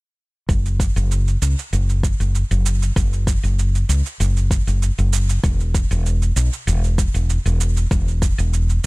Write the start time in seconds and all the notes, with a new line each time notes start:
0.49 F#1, kick, cabasa
0.66 cabasa
0.80 kick, cabasa
0.96 F#1, cabasa
1.11 cabasa
1.28 cabasa
1.42 C#2, cabasa
1.59 cabasa
1.73 F#1, cabasa
1.90 cabasa
2.03 kick, cabasa
2.20 F#1, cabasa
2.35 cabasa
2.51 F#1, cabasa
2.66 cabasa
2.82 cabasa
2.96 F#1, kick, cabasa
3.13 cabasa
3.27 kick, cabasa
3.43 F#1, cabasa
3.59 cabasa
3.75 cabasa
3.89 C#2, cabasa
4.06 cabasa
4.20 F#1, cabasa
4.37 cabasa
4.51 kick, cabasa
4.67 F#1, cabasa
4.82 cabasa
4.98 F#1, cabasa
5.13 cabasa
5.29 cabasa
5.44 E1, kick, cabasa
5.60 cabasa
5.75 kick, cabasa
5.91 E1, cabasa
6.06 cabasa
6.22 cabasa
6.36 B1, cabasa
6.53 cabasa
6.67 E1, cabasa
6.84 cabasa
6.98 kick, cabasa
7.14 E1, cabasa
7.30 cabasa
7.46 E1, cabasa
7.61 cabasa
7.77 cabasa
7.91 E1, kick, cabasa
8.08 cabasa
8.22 kick, cabasa
8.38 E1, cabasa
8.53 cabasa
8.70 cabasa